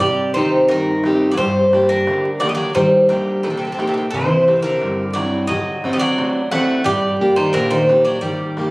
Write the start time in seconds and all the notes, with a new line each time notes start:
0.00 C3 G3 D5, darbuka dum
0.34 D#3 C4 D#4 G4 C5
0.68 G2 D#3 A#4, darbuka tek
1.04 C4 D#4 G4, darbuka tek
1.31 F#3 D5
1.37 G2 G3 C5, darbuka dum
1.73 A#3 D4 G4, darbuka tek
1.89 D3 A#4
2.07 D3, darbuka tek
2.40 F#3 A#3 D4 D5, darbuka tek
2.44 G4
2.49 G3 D#5
2.55 F#3 D5
2.75 D#3 G3 C5, darbuka dum
3.09 D3 A#3 G4 A#4 D#5, darbuka tek
3.43 A#2 D#3 A4, darbuka tek
3.50 C3 A4
3.57 C3 A4
3.65 C3 A4
3.72 C3 A4
3.79 C3 A#3 D#4 G4 A4, darbuka tek
3.87 C3 A4
3.94 C3 A4, darbuka tek
4.10 C3 E3 C5, darbuka dum
4.48 C4 E4 G4, darbuka tek
4.62 D3 A#4
4.81 G2, darbuka tek
5.13 F#3 C4 D5, darbuka tek
5.18 E4 G5
5.47 F#3 D#5, darbuka dum
5.51 D3
5.84 C4 D4 F#4, darbuka tek
5.93 G3 D#5
5.99 F#3 D5
6.18 A2, darbuka tek
6.51 A3 C4 D4 F#4 F#5, darbuka tek
6.84 G2 G3 D5, darbuka dum
7.21 A#3 D4 G4
7.36 D#3 C5
7.53 A#2 D3 A#4, darbuka tek
7.70 D#3 C5
7.89 A#3 D4 G4, darbuka tek
8.05 F#3 D5
8.21 D#3 G3 D5, darbuka dum
8.57 A#3 D#4 G4, darbuka tek